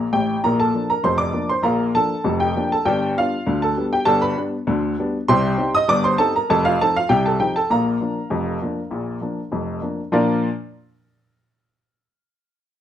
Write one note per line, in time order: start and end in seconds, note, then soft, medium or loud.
0.13 0.36 A1 medium
0.13 0.36 A2 medium
0.13 0.42 G4 medium
0.13 0.37 G5 medium
0.44 0.70 A#1 medium
0.44 0.70 A#2 medium
0.44 0.59 A#4 medium
0.44 0.59 A#5 medium
0.60 0.88 A4 medium
0.60 0.88 A5 medium
0.74 0.91 F3 medium
0.74 0.91 A#3 medium
0.74 0.92 D4 medium
0.90 1.04 A#4 medium
0.90 1.05 A#5 medium
1.04 1.30 F1 medium
1.04 1.30 F2 medium
1.04 1.19 C5 medium
1.04 1.19 C6 medium
1.18 1.48 D5 medium
1.18 1.48 D6 loud
1.33 1.50 F3 soft
1.33 1.50 A#3 medium
1.33 1.51 D4 medium
1.49 1.65 C5 medium
1.49 1.65 C6 medium
1.63 1.90 A#1 medium
1.63 1.90 A#2 medium
1.63 1.93 A#4 medium
1.63 1.93 F5 medium
1.63 1.88 A#5 medium
1.95 2.12 F3 medium
1.95 2.12 A#3 medium
1.95 2.12 D4 medium
1.95 2.38 A4 medium
1.95 2.32 A5 loud
2.24 2.51 F1 medium
2.24 2.51 F2 medium
2.40 2.69 G4 medium
2.40 2.69 G5 medium
2.56 2.73 F3 medium
2.56 2.72 A#3 medium
2.56 2.73 D4 medium
2.72 2.87 A4 medium
2.72 2.87 A5 medium
2.85 3.12 G1 medium
2.85 3.12 G2 loud
2.85 3.15 G4 medium
2.85 3.15 D5 medium
2.85 3.10 G5 medium
3.17 3.34 G3 medium
3.17 3.34 B3 medium
3.17 3.35 D4 medium
3.17 3.60 F4 medium
3.17 3.60 F5 loud
3.47 3.72 D2 medium
3.47 3.73 D3 medium
3.62 3.91 A4 medium
3.62 3.86 A5 medium
3.77 3.94 G3 medium
3.77 3.94 B3 medium
3.77 3.94 D4 medium
3.93 4.07 G4 medium
3.93 4.08 G5 medium
4.05 4.32 G1 medium
4.05 4.32 G2 loud
4.05 4.21 A4 medium
4.05 4.22 A5 loud
4.22 4.37 B4 medium
4.22 4.37 B5 loud
4.36 4.53 G3 medium
4.36 4.53 B3 medium
4.36 4.54 D4 medium
4.67 4.93 D2 medium
4.67 4.93 D3 medium
4.99 5.15 G3 medium
4.99 5.16 B3 medium
4.99 5.16 D4 medium
5.28 5.54 C2 loud
5.28 5.54 C3 loud
5.28 5.71 C5 medium
5.28 5.71 G5 medium
5.28 5.71 C6 loud
5.58 5.75 G3 medium
5.58 5.75 C4 medium
5.58 5.75 D#4 medium
5.75 5.89 D#5 medium
5.75 5.89 D#6 loud
5.88 6.14 G1 loud
5.88 6.14 G2 medium
5.88 6.03 D5 loud
5.88 6.04 D6 loud
6.04 6.19 C5 medium
6.04 6.19 C6 loud
6.18 6.35 G3 medium
6.18 6.36 C4 medium
6.18 6.36 D#4 medium
6.18 6.33 A4 medium
6.18 6.34 A5 loud
6.36 6.49 A#4 medium
6.36 6.50 A#5 medium
6.50 6.75 F1 medium
6.50 6.75 F2 loud
6.50 6.64 A4 medium
6.50 6.65 A5 loud
6.65 6.79 F4 medium
6.65 6.80 F5 loud
6.81 6.97 F3 medium
6.81 6.98 C4 medium
6.81 6.98 D#4 medium
6.81 6.95 A4 medium
6.81 6.95 A5 loud
6.96 7.10 F4 medium
6.96 7.11 F5 loud
7.09 7.35 C2 medium
7.09 7.35 C3 medium
7.09 7.24 G4 medium
7.09 7.25 G5 loud
7.26 7.40 A4 medium
7.26 7.40 A5 medium
7.40 7.57 F3 medium
7.40 7.57 C4 medium
7.40 7.57 D#4 medium
7.40 7.55 G4 medium
7.40 7.55 G5 medium
7.56 7.70 A4 medium
7.56 7.71 A5 medium
7.70 7.96 A#1 medium
7.70 7.96 A#2 medium
7.70 9.50 A#4 medium
7.70 9.50 F5 medium
7.70 9.49 A#5 medium
8.01 8.18 F3 soft
8.01 8.18 A#3 medium
8.01 8.18 D4 medium
8.30 8.57 F1 medium
8.30 8.57 F2 medium
8.62 8.79 F3 soft
8.62 8.79 A#3 soft
8.62 8.79 D4 medium
8.91 9.17 A#1 medium
8.91 9.18 A#2 medium
9.21 9.39 F3 soft
9.21 9.39 A#3 soft
9.21 9.39 D4 medium
9.52 9.78 F1 medium
9.52 9.78 F2 medium
9.82 9.99 F3 soft
9.82 9.99 A#3 soft
9.82 10.00 D4 medium
10.12 10.47 A#2 loud
10.12 10.47 F3 medium
10.12 10.47 D4 medium
10.12 10.47 F4 medium
10.12 10.47 A#4 medium
10.12 10.48 D5 medium